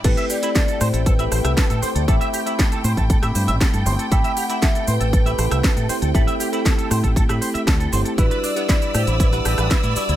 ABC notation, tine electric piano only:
X:1
M:4/4
L:1/16
Q:1/4=118
K:Ador
V:1 name="Tine electric piano"
[A,CEGB]3 [A,CEGb]6 [A,CEGb]4- [A,CEGb] [A,CEGc]2 | [A,CEGb]3 [A,CEGb]6 [A,CEGb]4- [A,CEGb] [A,CEGc]2 | [A,CEGb]3 [A,CEGb]6 [A,CEGb]4- [A,CEGb] [A,CEGc]2 | [A,CEGb]3 [A,CEGb]6 [A,CEGb]4- [A,CEGb] [A,CEGc]2 |
[G,DEFB]3 [G,DEBf]6 [G,DEBf]4- [G,DEBf] [G,DEFd]2 |]